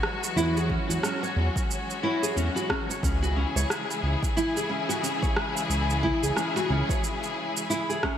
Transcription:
Already playing: E3 F#3 G#3 B3 F#4
0.03 cross-stick
0.24 shaker
0.36 E2 C#4 E4, shaker
0.56 G#4, shaker
0.70 C#4, kick
0.89 E2 F#4, shaker
1.03 C#4, cross-stick, shaker
1.23 C#5, shaker
1.36 E2
1.56 kick, shaker
1.71 shaker
1.90 shaker
2.03 E4
2.23 G#4, shaker
2.36 E2 C#4, shaker
2.56 F#4, shaker
2.70 C#4, kick, cross-stick
2.89 C#5, shaker
3.03 C#2 C#3 E3 G#3 C#4 E4 G#4, kick, shaker
3.23 F#4, shaker
3.36 C#4
3.56 C#2 C#5, shaker
3.70 cross-stick, shaker
3.91 shaker
4.03 C#2
4.23 kick, shaker
4.37 E4, shaker
4.56 G#4, shaker
4.69 C#4
4.89 F#4, shaker
5.03 C#4, shaker
5.22 C#5, kick, shaker
5.37 cross-stick
5.57 shaker
5.70 C#2, shaker
5.90 shaker
6.03 E4, kick
6.22 C#2 G#4, shaker
6.36 C#4, cross-stick, shaker
6.56 F#4, shaker
6.70 C#2 C#4
6.89 C#5, kick, shaker
7.04 shaker
7.23 shaker
7.57 shaker
7.70 E4, shaker
7.89 G#4, shaker
8.03 C#4, kick, cross-stick

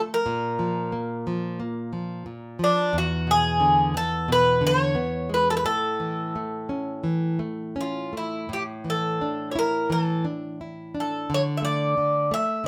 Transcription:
Already playing: A3
0.14 A#4
0.26 A#2
0.59 F3
0.92 A#3
1.27 F3
1.60 A#3
1.93 F3
2.26 A#2
2.59 F3
2.64 D4
2.93 E2
2.98 F#4
3.27 B2 G#4
3.60 D3
3.94 B3 A4
4.28 B2 B4
4.61 D3
4.67 C#5
4.95 B3
5.29 G#3
5.34 B4
5.50 A4
5.57 B4
5.64 A2 A4
6.00 E3
6.36 A3
6.69 C#4
7.04 E3
7.39 A3
7.76 C#4
7.81 F4
8.13 A3
8.17 E4
8.49 A2
8.53 G4
8.85 E3
8.90 A4
9.21 D4
9.51 C#5
9.56 E4 A#4
9.90 E3 A4
10.25 D4
10.61 E4
10.95 D4
11.00 A4
11.30 D3
11.34 C#5
11.57 E5
11.62 A3 D5
11.98 D3
12.31 A3 E5
12.64 D3

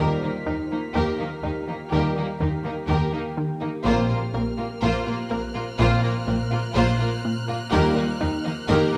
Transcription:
Already playing: A#3 D#4 G4 F6 B6
0.00 A#2 D#3 G3 G4 A#4 G5
0.22 D#3 A#3 D#4
0.46 D#2 D#3 A#3 D#4 G4
0.71 D#3 A#3 D#4
0.95 D#2 D#3 A#3 D#4 G4 A#4
1.19 D#3 A#3 D#4
1.43 D#2 D#3 A#3 D#4 G4
1.67 D#3 A#3 D#4
1.91 D#2 A#2 D#3 G3 A#3 D#4 G4 A#4
2.16 D#3 A#3 D#4
2.40 D#2 D#3 A#3 D#4 G4
2.64 D#3 A#3 D#4
2.88 D#2 D#3 A#3 G4 A#4
3.13 D#3 A#3 D#4
3.37 D#3
3.61 D#3 A#3 D#4
3.85 A#1 A#2 F3 A#3 C4 F4 C5 A#5 F6
4.09 A#2 A#3 F4
4.33 A#1 A#2 A#3 C4 A#4
4.58 A#2 A#3 F4
4.82 A#1 A#2 A#3 F4 C5 F#6
5.06 A#2 A#3 F4
5.30 A#1 A#2 A#3 C4 A#4
5.54 A#2 A#3 F4
5.78 A#1 A#2 F3 A#3 C4 F4 C5
6.02 A#2 A#3 F4
6.26 A#1 A#2 A#3 C4 A#4
6.51 A#2 A#3 F4
6.75 A#1 A#2 A#3 F4 C5
6.99 A#2 A#3 F4
7.25 A#2
7.48 A#2 A#3 F4
7.71 D#2 A#2 D#3 G3 A#3 D#4 G4 A#4 A#5
7.96 D#3 A#3 D#4
8.20 D#2 D#3 A#3 D#4 G4
8.44 D#3 A#3 D#4
8.69 D#2 D#3 A#3 D#4 G4 A#4
8.93 D#3 A#3 D#4

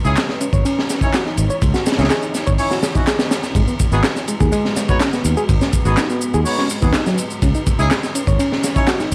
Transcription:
Already playing: E3 D#4 C#5
0.05 C#2 C#4 D#4 E4 G#4, shaker
0.17 snare, clap, ride, shaker
0.29 snare
0.41 C#4, ride, shaker
0.53 G#1 C#5, kick, shaker
0.65 C#4, ride, shaker
0.79 snare
0.89 snare, ride, shaker
1.01 C#4 D#4 E4 C#5, kick, shaker
1.14 F#4, snare, clap, ride, shaker
1.26 D#4, snare
1.37 G#1, ride, shaker
1.50 C#5, shaker
1.62 C#2 E4, kick, ride, shaker
1.74 F#4, snare, shaker
1.86 snare, ride, shaker
1.92 snare, ride
1.98 C#2 C#4 D#4 E4 G#4, snare, ride, shaker
2.04 snare, ride
2.10 G#4, snare, clap, ride, shaker
2.22 D#4, shaker
2.34 snare, ride, shaker
2.47 G#1 C#5, kick, shaker
2.58 C#4 D#4 E4 C#5, open hi-hat, shaker
2.71 F#4, snare, shaker
2.83 snare, ride, shaker
2.95 C#4 D#4 E4 F#4, kick, shaker
3.07 G#4, snare, clap, ride, shaker
3.19 B3, snare, ride, shaker
3.31 snare, ride, shaker
3.43 snare, shaker
3.55 G#1 G#3 F#4 B4, kick, ride, shaker
3.68 B3, shaker
3.80 kick, ride, shaker
3.92 G#1 B3 D#4 F#4 G#4, shaker
4.03 snare, clap, ride, shaker
4.16 snare, shaker
4.28 G#3, ride, shaker
4.40 D#2 G#4, kick, shaker
4.52 G#3, ride, shaker
4.65 snare
4.76 snare, ride, shaker
4.89 B3 D#4 F#4 C#5, kick, shaker
5.00 C#4, snare, clap, ride, shaker
5.13 B3, snare, shaker
5.25 D#2, ride, shaker
5.37 G#4, shaker
5.49 G#1, kick, ride, shaker
5.61 C#4, snare, shaker
5.73 kick, ride, shaker
5.85 G#1 B3 D#4 F#4 G#4, shaker
5.97 D#4, snare, clap, ride, shaker
6.10 B3, shaker
6.21 shaker
6.34 D#2 G#4, shaker
6.45 B3 D#4 F#4 C#5, open hi-hat, shaker
6.58 C#4, snare
6.70 ride, shaker
6.82 D#2 B3 D#4 F#4 G#4, kick, shaker
6.93 D#4, snare, clap, ride, shaker
7.06 F#3, snare, shaker
7.18 ride, shaker
7.30 shaker
7.42 C#2 E3 C#4 D#4 C#5, kick, ride, shaker
7.55 D#4, shaker
7.67 kick, ride, shaker
7.79 C#2 C#4 D#4 E4 G#4, shaker
7.91 snare, clap, ride, shaker
8.03 snare, shaker
8.15 C#4, ride, shaker
8.27 G#1 C#5, kick, shaker
8.39 C#4, ride, shaker
8.52 snare
8.64 snare, ride, shaker
8.76 C#4 D#4 E4 C#5, kick, shaker
8.87 F#4, snare, clap, ride, shaker
9.00 D#4, snare, shaker

